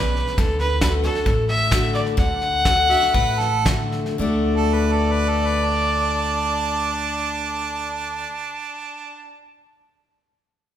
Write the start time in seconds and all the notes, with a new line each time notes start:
Already playing: B1 C#3 B4
0.17 snare
0.27 snare
0.38 D2 D3 A4, kick, snare
0.60 B4, snare
0.81 D3 A3 D4 F#4 B4, kick, snare, hi-hat pedal
1.04 D4 F#4 A4, snare
1.15 snare
1.26 A1 A2, kick, snare
1.49 E5, snare
1.71 D3 A3 D4 F#4, kick, snare, hi-hat pedal
1.95 D5, snare
2.06 snare
2.17 D2 D3 F#5, kick, snare
2.42 snare
2.64 D3 A3 D4 F#4, kick, snare, hi-hat pedal
2.89 D4 F#4 E5, snare
3.02 snare
3.14 A1 A2 B4, kick, snare
3.39 A4, snare
3.65 D3 A3 D4 F#4, kick, snare, hi-hat pedal
3.92 snare
4.06 snare
4.18 D2 D3 A3 D4 F#4 D5
4.56 A4
4.74 B4
4.93 A4
5.11 B4
5.29 A4
5.47 B4
5.65 D4